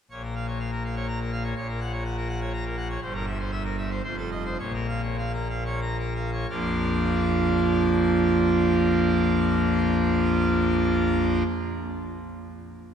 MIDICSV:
0, 0, Header, 1, 2, 480
1, 0, Start_track
1, 0, Tempo, 486618
1, 110, Time_signature, 3, 2, 24, 8
1, 3469, Tempo, 537634
1, 4429, Tempo, 588235
1, 4909, Tempo, 657174
1, 5869, Tempo, 699301
1, 10293, End_track
2, 0, Start_track
2, 0, Title_t, "Pipe organ"
2, 0, Program_c, 0, 19
2, 106, Note_on_c, 0, 73, 62
2, 108, Note_on_c, 0, 46, 70
2, 109, Note_on_c, 0, 34, 62
2, 216, Note_off_c, 0, 73, 0
2, 232, Note_on_c, 0, 70, 53
2, 339, Note_off_c, 0, 70, 0
2, 346, Note_on_c, 0, 77, 65
2, 457, Note_off_c, 0, 77, 0
2, 466, Note_on_c, 0, 73, 59
2, 577, Note_off_c, 0, 73, 0
2, 586, Note_on_c, 0, 77, 62
2, 697, Note_off_c, 0, 77, 0
2, 710, Note_on_c, 0, 70, 67
2, 819, Note_off_c, 0, 70, 0
2, 831, Note_on_c, 0, 77, 63
2, 939, Note_off_c, 0, 77, 0
2, 948, Note_on_c, 0, 73, 59
2, 1057, Note_off_c, 0, 73, 0
2, 1066, Note_on_c, 0, 82, 96
2, 1176, Note_off_c, 0, 82, 0
2, 1186, Note_on_c, 0, 70, 58
2, 1295, Note_off_c, 0, 70, 0
2, 1303, Note_on_c, 0, 77, 65
2, 1413, Note_off_c, 0, 77, 0
2, 1417, Note_on_c, 0, 73, 73
2, 1511, Note_off_c, 0, 34, 0
2, 1511, Note_off_c, 0, 46, 0
2, 1520, Note_off_c, 0, 73, 0
2, 1537, Note_on_c, 0, 46, 80
2, 1540, Note_on_c, 0, 34, 78
2, 1540, Note_on_c, 0, 73, 72
2, 1652, Note_off_c, 0, 73, 0
2, 1665, Note_on_c, 0, 70, 64
2, 1774, Note_off_c, 0, 70, 0
2, 1781, Note_on_c, 0, 78, 68
2, 1892, Note_off_c, 0, 78, 0
2, 1895, Note_on_c, 0, 73, 66
2, 2008, Note_off_c, 0, 73, 0
2, 2020, Note_on_c, 0, 78, 75
2, 2130, Note_off_c, 0, 78, 0
2, 2138, Note_on_c, 0, 70, 73
2, 2248, Note_off_c, 0, 70, 0
2, 2255, Note_on_c, 0, 78, 75
2, 2366, Note_off_c, 0, 78, 0
2, 2377, Note_on_c, 0, 73, 72
2, 2486, Note_off_c, 0, 73, 0
2, 2500, Note_on_c, 0, 82, 97
2, 2607, Note_off_c, 0, 82, 0
2, 2618, Note_on_c, 0, 70, 65
2, 2726, Note_off_c, 0, 70, 0
2, 2734, Note_on_c, 0, 78, 67
2, 2843, Note_off_c, 0, 78, 0
2, 2860, Note_on_c, 0, 73, 77
2, 2934, Note_off_c, 0, 46, 0
2, 2935, Note_off_c, 0, 34, 0
2, 2962, Note_off_c, 0, 73, 0
2, 2981, Note_on_c, 0, 31, 80
2, 2982, Note_on_c, 0, 72, 75
2, 2983, Note_on_c, 0, 43, 90
2, 3089, Note_off_c, 0, 72, 0
2, 3102, Note_on_c, 0, 70, 66
2, 3210, Note_off_c, 0, 70, 0
2, 3225, Note_on_c, 0, 76, 108
2, 3333, Note_off_c, 0, 76, 0
2, 3350, Note_on_c, 0, 72, 69
2, 3459, Note_off_c, 0, 72, 0
2, 3470, Note_on_c, 0, 76, 69
2, 3572, Note_off_c, 0, 76, 0
2, 3586, Note_on_c, 0, 70, 75
2, 3688, Note_off_c, 0, 70, 0
2, 3704, Note_on_c, 0, 76, 81
2, 3806, Note_off_c, 0, 76, 0
2, 3817, Note_on_c, 0, 72, 65
2, 3908, Note_off_c, 0, 31, 0
2, 3910, Note_off_c, 0, 43, 0
2, 3918, Note_off_c, 0, 72, 0
2, 3934, Note_on_c, 0, 29, 73
2, 3937, Note_on_c, 0, 41, 74
2, 3937, Note_on_c, 0, 72, 67
2, 4044, Note_off_c, 0, 72, 0
2, 4056, Note_on_c, 0, 69, 64
2, 4166, Note_off_c, 0, 69, 0
2, 4179, Note_on_c, 0, 75, 87
2, 4290, Note_off_c, 0, 75, 0
2, 4305, Note_on_c, 0, 72, 65
2, 4412, Note_off_c, 0, 72, 0
2, 4414, Note_off_c, 0, 29, 0
2, 4415, Note_off_c, 0, 41, 0
2, 4430, Note_on_c, 0, 34, 72
2, 4430, Note_on_c, 0, 46, 73
2, 4430, Note_on_c, 0, 73, 65
2, 4534, Note_off_c, 0, 73, 0
2, 4550, Note_on_c, 0, 70, 62
2, 4654, Note_off_c, 0, 70, 0
2, 4666, Note_on_c, 0, 77, 70
2, 4773, Note_off_c, 0, 77, 0
2, 4789, Note_on_c, 0, 73, 53
2, 4897, Note_off_c, 0, 73, 0
2, 4910, Note_on_c, 0, 77, 59
2, 5010, Note_off_c, 0, 77, 0
2, 5024, Note_on_c, 0, 70, 65
2, 5125, Note_off_c, 0, 70, 0
2, 5138, Note_on_c, 0, 77, 56
2, 5242, Note_off_c, 0, 77, 0
2, 5258, Note_on_c, 0, 73, 66
2, 5362, Note_off_c, 0, 73, 0
2, 5376, Note_on_c, 0, 82, 79
2, 5482, Note_off_c, 0, 82, 0
2, 5498, Note_on_c, 0, 70, 50
2, 5606, Note_off_c, 0, 70, 0
2, 5620, Note_on_c, 0, 77, 64
2, 5730, Note_off_c, 0, 77, 0
2, 5747, Note_on_c, 0, 73, 67
2, 5840, Note_off_c, 0, 34, 0
2, 5840, Note_off_c, 0, 46, 0
2, 5852, Note_off_c, 0, 73, 0
2, 5870, Note_on_c, 0, 34, 68
2, 5870, Note_on_c, 0, 41, 54
2, 5871, Note_on_c, 0, 53, 56
2, 5871, Note_on_c, 0, 65, 56
2, 5872, Note_on_c, 0, 58, 54
2, 5872, Note_on_c, 0, 62, 58
2, 9254, Note_off_c, 0, 34, 0
2, 9255, Note_off_c, 0, 41, 0
2, 9256, Note_off_c, 0, 53, 0
2, 9256, Note_off_c, 0, 58, 0
2, 9256, Note_off_c, 0, 65, 0
2, 9257, Note_off_c, 0, 62, 0
2, 10293, End_track
0, 0, End_of_file